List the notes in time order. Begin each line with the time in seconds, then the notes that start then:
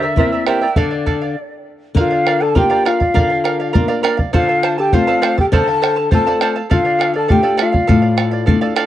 Already playing: D3 E5
0.02 A#4 D5 E5
0.16 A#3 C4 E4 A#4 C5 D5 E5, bombo low
0.32 A#4 D5 E5
0.47 G4 A#4 C5 D5 E5 G5, bombo rim
0.61 A#4 D5 E5
0.76 D3 A4 D5 F5, bombo low
0.91 D5 F5
1.06 A4 D5 F5, bombo low
1.22 D5 F5
1.95 D3 A#4 D5 F5, bombo low
2.00 F4 F5
2.11 D5 F5
2.26 A#4 D5 F5, bombo rim
2.40 A4 D5 F5 A5
2.55 A#3 D4 F4 G4 A#4 D5 F5 G5, bombo low
2.70 A#4 D5 F5
2.85 F4 A#4 D5 F5, bombo rim
3.00 D5 F5, bombo low
3.14 D3 A#4 D5 F5, bombo low
3.30 D5 F5
3.44 A#4 D5 F5, bombo rim
3.60 D5 F5
3.73 A#3 D4 F4 A#4 D5 F5, bombo low
3.88 A#4 D5 F5
4.03 A#4 D5 F5, bombo rim
4.17 D5 F5, bombo low
4.33 D3 F4 A4 C5 D5 F5 A5, bombo low
4.49 A4 F5 A5
4.63 A4 C5 F5 A5, bombo rim
4.78 G4 A4 F5 G5 A5
4.93 A3 C4 F4 A4 C5 F5 A5, bombo low
5.07 A4 C5 D5 F5 A5
5.22 A4 C5 D5 F5 A5, bombo rim
5.38 G4 A4 F5 G5 A5, bombo low
5.52 D3 A4 C5 D5 F5 A5, bombo low
5.67 A4 F5 A5
5.82 A4 C5 F5 A5, bombo rim
5.96 A4 F5 A5
6.11 A3 C4 F4 A4 C5 F5 A5, bombo low
6.27 A4 C5 D5 F5 A5
6.41 A4 C5 D5 F5 A5, bombo rim
6.56 A4 F5 A5
6.70 D3 F4 A4 D5 F5, bombo low
6.85 D5 F5
6.99 A4 D5 F5, bombo rim
7.14 A4 D5 F5 A5
7.28 A3 D4 F4 G4 A4 D5 F5 G5, bombo low
7.43 A4 D5 F5
7.57 A4 D5 F5, bombo rim
7.63 F4
7.72 D5 F5, bombo low
7.87 A2 A4 D5 F5, bombo low
8.02 D5 F5
8.17 A4 D5 F5, bombo rim
8.31 D5 F5
8.46 A3 D4 F4 A4 D5 F5, bombo low
8.61 A4 D5 F5
8.76 A4 D5 F5, bombo rim